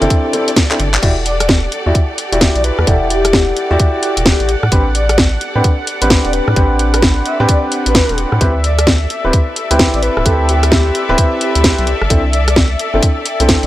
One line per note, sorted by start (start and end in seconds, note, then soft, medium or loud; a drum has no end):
0.00 0.08 G1 medium
0.00 0.32 C4 loud
0.00 0.32 D4 medium
0.00 0.32 E4 medium
0.00 11.87 G4 medium
0.00 8.40 A4 medium
0.00 0.32 A4 loud
0.00 8.41 D5 medium
0.00 closed hi-hat soft
0.10 kick loud
0.10 closed hi-hat medium
0.33 0.48 C4 medium
0.33 0.48 D4 medium
0.33 0.48 E4 medium
0.33 0.48 A4 medium
0.33 open hi-hat loud
0.48 closed hi-hat medium
0.56 kick loud
0.56 snare loud
0.56 closed hi-hat medium
0.71 0.77 C4 medium
0.71 0.77 D4 medium
0.71 0.77 E4 medium
0.71 0.77 A4 medium
0.71 clap medium
0.71 closed hi-hat soft
0.80 0.98 G1 medium
0.80 open hi-hat loud
0.94 clap medium
1.02 1.68 E1 loud
1.02 1.12 E4 medium
1.02 1.12 F#4 medium
1.02 1.12 G4 medium
1.02 1.12 D5 medium
1.02 8.42 F#5 medium
1.02 kick loud
1.02 closed hi-hat medium
1.02 crash medium
1.26 1.35 D5 medium
1.26 open hi-hat loud
1.40 1.46 D5 medium
1.40 cross-stick medium
1.40 closed hi-hat medium
1.49 kick loud
1.49 snare loud
1.72 open hi-hat loud
1.86 1.93 E2 medium
1.86 1.96 E4 medium
1.86 1.96 F#4 medium
1.86 1.96 G4 medium
1.86 1.96 D5 medium
1.95 kick loud
1.95 closed hi-hat medium
2.18 open hi-hat loud
2.32 2.48 E1 medium
2.32 2.85 E4 medium
2.32 2.85 F#4 medium
2.32 2.85 G4 medium
2.32 2.85 D5 medium
2.32 closed hi-hat medium
2.41 kick loud
2.41 snare loud
2.41 closed hi-hat medium
2.55 2.71 B1 medium
2.55 2.62 D5 medium
2.55 closed hi-hat soft
2.64 2.86 B4 loud
2.64 open hi-hat loud
2.79 2.85 E2 medium
2.79 cross-stick medium
2.87 3.53 E1 loud
2.87 3.67 E4 medium
2.87 3.67 G4 medium
2.87 2.97 A4 medium
2.87 3.67 D5 loud
2.87 3.67 F#5 medium
2.87 kick loud
2.87 closed hi-hat medium
3.02 3.07 A4 medium
3.10 3.76 G4 medium
3.10 open hi-hat loud
3.25 cross-stick medium
3.25 closed hi-hat medium
3.33 kick loud
3.33 snare loud
3.57 open hi-hat loud
3.71 3.77 E2 medium
3.71 4.48 E4 loud
3.71 4.48 F#4 medium
3.71 4.48 G4 medium
3.71 4.48 D5 loud
3.80 kick loud
3.80 closed hi-hat medium
4.03 4.12 G4 medium
4.03 open hi-hat loud
4.17 4.33 E1 medium
4.17 4.23 G4 medium
4.17 closed hi-hat medium
4.26 4.55 G4 medium
4.26 kick loud
4.26 snare loud
4.26 closed hi-hat medium
4.40 4.56 A1 medium
4.40 closed hi-hat soft
4.49 open hi-hat loud
4.63 4.70 A2 medium
4.63 cross-stick medium
4.72 5.38 A1 loud
4.72 4.82 C4 medium
4.72 4.82 D4 medium
4.72 4.82 G4 medium
4.72 4.82 B4 loud
4.72 kick loud
4.72 closed hi-hat medium
4.95 5.04 D5 medium
4.95 open hi-hat loud
5.09 5.15 D5 medium
5.09 cross-stick medium
5.09 closed hi-hat medium
5.18 kick loud
5.18 snare loud
5.41 open hi-hat loud
5.55 5.62 A2 medium
5.55 5.65 C4 medium
5.55 5.65 D4 medium
5.55 5.65 G4 medium
5.55 5.65 B4 medium
5.64 kick loud
5.64 closed hi-hat medium
5.87 open hi-hat loud
6.02 6.17 A1 medium
6.02 6.54 C4 medium
6.02 6.54 D4 medium
6.02 6.54 G4 medium
6.02 6.54 B4 medium
6.02 closed hi-hat medium
6.10 kick loud
6.10 snare loud
6.10 closed hi-hat medium
6.25 6.41 E1 medium
6.25 6.32 D5 medium
6.25 closed hi-hat soft
6.33 6.55 B4 medium
6.33 open hi-hat loud
6.48 6.54 A2 medium
6.48 cross-stick medium
6.56 7.22 A1 loud
6.56 7.37 C4 medium
6.56 7.37 D4 medium
6.56 7.37 G4 medium
6.56 7.37 B4 medium
6.56 kick loud
6.56 closed hi-hat medium
6.79 open hi-hat loud
6.94 7.03 B4 medium
6.94 cross-stick medium
6.94 closed hi-hat medium
7.02 kick loud
7.02 snare loud
7.26 7.37 E5 medium
7.26 open hi-hat medium
7.40 7.47 A2 medium
7.40 8.39 C4 loud
7.40 8.39 D4 medium
7.40 8.39 G4 medium
7.40 8.39 B4 loud
7.40 7.46 D5 medium
7.49 7.58 D5 medium
7.49 kick loud
7.49 closed hi-hat medium
7.72 open hi-hat loud
7.86 8.02 A1 medium
7.86 8.18 B4 medium
7.86 closed hi-hat medium
7.95 kick loud
7.95 snare loud
7.95 closed hi-hat medium
8.09 8.25 E1 medium
8.09 closed hi-hat soft
8.18 open hi-hat loud
8.32 8.39 A2 loud
8.32 cross-stick medium
8.41 9.07 D2 loud
8.41 8.51 C4 medium
8.41 8.51 E4 medium
8.41 8.51 G4 medium
8.41 13.67 A4 medium
8.41 8.51 B4 loud
8.41 13.67 E5 medium
8.41 kick loud
8.41 closed hi-hat medium
8.52 13.67 D5 medium
8.64 8.73 D5 medium
8.64 open hi-hat loud
8.79 8.84 D5 medium
8.79 cross-stick medium
8.79 closed hi-hat medium
8.87 kick loud
8.87 snare loud
9.10 open hi-hat medium
9.24 9.31 D1 medium
9.24 9.34 C4 medium
9.24 9.34 E4 medium
9.24 9.34 G4 medium
9.24 9.34 B4 medium
9.33 kick loud
9.33 closed hi-hat medium
9.56 open hi-hat loud
9.71 9.87 D2 medium
9.71 10.23 C4 medium
9.71 10.23 E4 medium
9.71 10.24 G4 medium
9.71 10.23 B4 medium
9.71 closed hi-hat medium
9.79 kick loud
9.79 snare loud
9.79 closed hi-hat medium
9.94 10.10 A1 medium
9.94 10.01 D5 medium
9.94 closed hi-hat soft
10.03 10.24 B4 medium
10.03 open hi-hat loud
10.17 10.23 D1 medium
10.17 cross-stick medium
10.25 10.91 D2 loud
10.25 11.06 C4 medium
10.25 11.06 E4 medium
10.25 11.06 G4 medium
10.25 10.35 A4 medium
10.25 11.06 B4 loud
10.25 kick loud
10.25 closed hi-hat medium
10.40 10.46 A4 medium
10.49 11.15 G4 medium
10.49 open hi-hat loud
10.63 cross-stick medium
10.63 closed hi-hat medium
10.72 kick loud
10.72 snare loud
10.95 open hi-hat loud
11.09 11.16 D1 medium
11.09 11.86 C4 loud
11.09 11.86 E4 medium
11.09 11.86 G4 medium
11.09 11.86 B4 loud
11.18 kick loud
11.18 closed hi-hat medium
11.41 11.50 G4 medium
11.41 open hi-hat loud
11.55 11.71 D2 medium
11.55 11.61 G4 medium
11.55 closed hi-hat medium
11.64 11.93 G4 medium
11.64 kick loud
11.64 snare loud
11.64 closed hi-hat medium
11.78 11.94 C2 medium
11.78 closed hi-hat soft
11.87 open hi-hat loud
12.01 12.08 G1 medium
12.01 cross-stick medium
12.10 12.76 C2 loud
12.10 12.20 C4 medium
12.10 12.20 D4 medium
12.10 12.20 E4 medium
12.10 12.20 A4 loud
12.10 kick loud
12.10 closed hi-hat medium
12.33 12.43 D5 medium
12.33 open hi-hat loud
12.48 12.53 D5 medium
12.48 cross-stick medium
12.48 closed hi-hat medium
12.56 kick loud
12.56 snare loud
12.79 open hi-hat loud
12.92 13.00 G1 medium
12.92 13.04 C4 medium
12.92 13.04 D4 medium
12.92 13.04 E4 medium
12.92 13.04 A4 medium
12.92 13.67 G5 medium
13.03 kick loud
13.03 closed hi-hat medium
13.26 open hi-hat loud
13.40 13.56 C2 medium
13.40 13.67 C4 medium
13.40 13.67 D4 medium
13.40 13.67 E4 medium
13.40 13.67 A4 medium
13.40 closed hi-hat medium
13.49 kick loud
13.49 snare loud
13.49 closed hi-hat medium
13.63 13.67 G1 medium
13.63 13.67 D5 medium
13.63 closed hi-hat soft